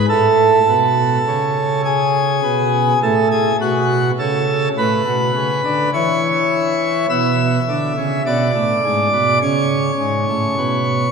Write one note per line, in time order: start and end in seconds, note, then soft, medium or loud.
0.09 0.59 A2 medium
0.09 1.81 A4 loud
0.69 1.18 B2 medium
1.27 2.41 C#3 medium
1.85 2.99 G#4 medium
2.43 2.93 B2 medium
3.03 3.52 A2 medium
3.03 3.27 A4 loud
3.31 3.56 G#4 medium
3.61 4.11 B2 medium
3.61 4.11 F#4 medium
4.19 4.68 C#3 medium
4.19 4.68 A4 medium
4.78 5.02 A2 medium
4.78 5.90 B4 loud
5.07 5.31 B2 medium
5.36 5.60 C#3 medium
5.64 5.89 D3 medium
5.93 7.06 E3 medium
5.93 7.06 C#5 medium
7.10 7.59 B2 medium
7.10 8.22 E5 medium
7.69 7.93 D3 medium
7.97 8.22 C#3 medium
8.26 8.51 B2 medium
8.26 9.38 D5 loud
8.55 8.80 A2 medium
8.84 9.09 G#2 medium
9.13 9.37 B2 medium
9.42 9.91 C#3 medium
9.42 11.12 C#5 loud
10.00 10.24 G#2 medium
10.29 10.54 A2 medium
10.58 11.07 B2 medium